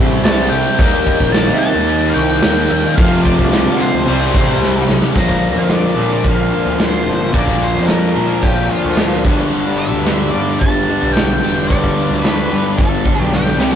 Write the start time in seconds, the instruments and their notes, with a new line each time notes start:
Already playing: picked electric bass A1, distorted electric guitar C3 G3 C4 E4, tonewheel organ E4 G4 C5 G5
0.23 picked electric bass C2, lead electric guitar A5, snare, ride
0.50 picked electric bass C2, lead electric guitar G5, snare, ride
0.79 picked electric bass D#2, distorted electric guitar D#3 G3 A#3, tonewheel organ D#4 A#4, kick, ride
0.83 distorted electric guitar D#4
1.06 kick, ride
1.20 picked electric bass A#1, kick
1.32 lead electric guitar A5, snare, ride
1.47 picked electric bass C3
1.58 lead electric guitar A5
1.63 ride
1.75 picked electric bass D#2
1.89 ride
2.09 lead electric guitar F5
2.14 picked electric bass C2, lead electric guitar G5, ride
2.42 picked electric bass D#2, snare, ride
2.70 picked electric bass D#2, ride
2.95 distorted electric guitar F2 C3 F3 A3, picked electric bass F2, tonewheel organ C4 F4 A4 F5, lead electric guitar F5, kick, ride
3.00 distorted electric guitar C4 F4
3.23 lead electric guitar D5, kick, ride
3.39 picked electric bass C2, kick
3.53 snare, ride
3.66 picked electric bass D3
3.76 lead electric guitar C5, ride
3.94 picked electric bass D2
4.07 picked electric bass C2, distorted electric guitar C3 E3 G3 C4, tonewheel organ D4 G4 C5 E5, ride
4.11 distorted electric guitar E4
4.34 picked electric bass A1, kick, ride
4.59 picked electric bass C2, snare
4.87 picked electric bass B1, snare
5.02 snare
5.13 picked electric bass A#1, distorted electric guitar A#2 D3 F3 A#3 D4, kick, crash
5.18 lead electric guitar A#5
5.29 kick
5.43 closed hi-hat
5.55 picked electric bass F2, lead electric guitar F5
5.70 lead electric guitar D5, snare, closed hi-hat
5.95 picked electric bass A#2, distorted electric guitar D3 F3 A#3 D4, closed hi-hat
5.99 distorted electric guitar A#2
6.11 lead electric guitar D5, snare
6.24 picked electric bass A#1, kick, closed hi-hat
6.28 lead electric guitar F5
6.53 closed hi-hat
6.65 picked electric bass D2
6.77 distorted electric guitar A#2 D3 F3 A#3 D4, snare, closed hi-hat
6.84 lead electric guitar C5
7.06 picked electric bass G1, closed hi-hat
7.32 picked electric bass A#1, distorted electric guitar A#2 D3 F3 A#3 D4, lead electric guitar D5, kick, closed hi-hat
7.47 kick
7.62 lead electric guitar C5, closed hi-hat
7.74 picked electric bass F2
7.87 lead electric guitar A#4, snare, closed hi-hat
8.14 picked electric bass A#2, distorted electric guitar A#2 D3 F3 A#3 D4, closed hi-hat
8.43 picked electric bass A#1, lead electric guitar G4, kick, closed hi-hat
8.70 lead electric guitar F4, closed hi-hat
8.85 picked electric bass D2
8.97 distorted electric guitar A#2 D3 F3 A#3 D4, snare, closed hi-hat
9.24 picked electric bass G1, distorted electric guitar G2 D3 G3 B3, kick, closed hi-hat
9.28 distorted electric guitar D4
9.51 picked electric bass G1, closed hi-hat
9.78 lead electric guitar E5, closed hi-hat
9.94 picked electric bass D2
10.06 distorted electric guitar G2 D3 G3 B3 D4, snare, closed hi-hat
10.31 picked electric bass G2, lead electric guitar D5, closed hi-hat
10.48 snare
10.59 picked electric bass G1, lead electric guitar A5, kick, closed hi-hat
10.89 distorted electric guitar G2 D3 G3 B3 D4, closed hi-hat
11.02 picked electric bass B1
11.13 lead electric guitar G5, snare, closed hi-hat
11.42 picked electric bass E1, distorted electric guitar G2 D3 G3 B3, closed hi-hat
11.46 distorted electric guitar D4
11.67 picked electric bass G1, lead electric guitar D5, kick, closed hi-hat
11.84 kick
11.98 closed hi-hat
12.09 picked electric bass D2
12.22 distorted electric guitar G2 D3 G3 B3 D4, lead electric guitar B4, snare, closed hi-hat
12.52 picked electric bass G2, closed hi-hat
12.77 picked electric bass G1, lead electric guitar A4, kick, closed hi-hat
13.04 distorted electric guitar G2 D3 G3 B3 D4, kick, closed hi-hat
13.19 picked electric bass B1, lead electric guitar G4
13.32 lead electric guitar G4, snare
13.46 snare
13.59 picked electric bass C2, distorted electric guitar C3 G3 C4 E4, snare